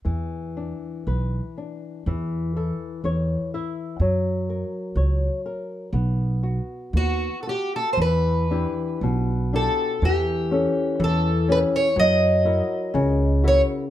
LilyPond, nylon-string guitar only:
\new Staff \with { instrumentName = "Nylon-string guitar" } { \time 2/4 \key e \minor \tempo 4 = 61 e8 d'8 b'8 d'8 | e8 <e' a'>8 cis''8 <e' e''>8 | fis8 ais'8 cis''8 ais'8 | b8 fis'8 b8 fis'8 |
e8 <d' e' g'>8 b,8 <d' e' g'>8 | e8 <cis' g' a'>8 e8 <cis' g' a'>8 | fis8 <e' fis' ais'>8 cis8 <e' fis' ais'>8 | }